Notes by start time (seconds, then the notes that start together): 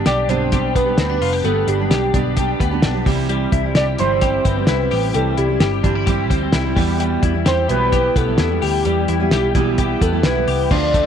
Already playing: G3 B3 D4 G4
0.05 B1 G4 D5, snare, closed hi-hat
0.28 B1 G2 D3 G3 B3 D4 G4 C5, closed hi-hat
0.51 G3 B3 D4 G4, kick, snare, closed hi-hat
0.76 B3 B4, kick, closed hi-hat
0.86 G3 B3 D4 G4
0.98 D2 C4, snare, closed hi-hat
1.09 G3 B3 D4 G4
1.21 F1 F4, open hi-hat
1.33 G4
1.44 G1 G3 B3 D4 G4 A4, closed hi-hat
1.67 G1 D4 G4, closed hi-hat
1.79 G3 B3 D4 G4
1.90 B1 G4, snare, closed hi-hat
2.14 B1 G2 D3 G3 B3 D4 G4, kick, closed hi-hat
2.37 G3 B3 D4 G4, kick, closed hi-hat
2.60 D2 B3, kick, closed hi-hat
2.71 G3 B3 D4 G4
2.82 B1 D4, snare, closed hi-hat
2.94 G3 B3 D4 G4
3.06 C2 C3 E3 G3 C4 E4, kick, open hi-hat
3.29 G3, closed hi-hat
3.52 C2 E4, kick, closed hi-hat
3.63 G3 C4 E4
3.75 C2 G4 D5, snare, closed hi-hat
3.98 G1 C3 E3 G3 C4 E4 C5, closed hi-hat
4.21 E3 G3 C4 E4 G4, kick, snare, closed hi-hat
4.45 G1 C4 B4, kick, closed hi-hat
4.56 G3 C4 E4
4.67 C2 E4, snare, closed hi-hat
4.79 G3 C4 E4
4.91 A1 G4, open hi-hat
5.14 C2 E3 G3 C4 E4 A4, closed hi-hat
5.37 C2 E4 G4, closed hi-hat
5.49 G3 C4 E4
5.60 G1 G4, snare, closed hi-hat
5.83 G1 C3 E3 G3 C4 D4 E4, kick, closed hi-hat
5.95 E4
6.06 E3 G3 C4 E4 G4, kick, snare, closed hi-hat
6.30 D2 C4, kick, closed hi-hat
6.41 G3 C4 E4
6.52 C2 E4, snare, closed hi-hat
6.65 G3 C4 E4
6.76 E2 B2 E3 G3 B3 E4, kick, open hi-hat
7.00 G3, closed hi-hat
7.22 E2 E4, kick, closed hi-hat
7.34 E3 G3 B3 E4
7.46 E2 G4 C5, snare, closed hi-hat
7.68 B1 E2 B2 E3 G3 B3 E4 B4, closed hi-hat
7.92 E3 G3 B3 E4 G4, kick, snare, closed hi-hat
8.16 B1 B3 A4, kick, closed hi-hat
8.26 E3 G3 B3 E4
8.38 E2 E4, snare, closed hi-hat
8.50 E3 G3 B3 E4
8.62 D2 G4, open hi-hat
8.84 E2 E3 G3 B3 E4, closed hi-hat
9.08 E2 E4, closed hi-hat
9.20 E3 G3 B3 E4
9.31 B1 G4, snare, closed hi-hat
9.54 B1 E2 B2 E3 G3 B3 E4, kick, closed hi-hat
9.77 E3 G3 B3 E4 G4, kick, closed hi-hat
10.01 E2 B3 A4, kick, closed hi-hat
10.12 E3 G3 B3 E4
10.23 B1 E4 B4, snare, closed hi-hat
10.35 E3 G3 B3 E4
10.47 C2 G4, open hi-hat
10.70 D2 D3 F3 A3 D4 F4 D5, kick, crash
10.94 A3, kick, closed hi-hat